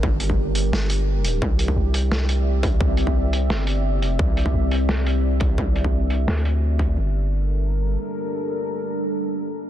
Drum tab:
HH |--x---x---x---x-|--x---x---x---x-|--x---x---x---x-|--x---x---x---x-|
SD |--------o-------|--------o-------|--------o-------|--------o-------|
BD |o--o------------|o--o----------o-|o--o------------|o--o----------o-|

HH |--x---x--xx---x-|----------------|----------------|
SD |--------o-------|----------------|----------------|
BD |o--o----------o-|----------------|----------------|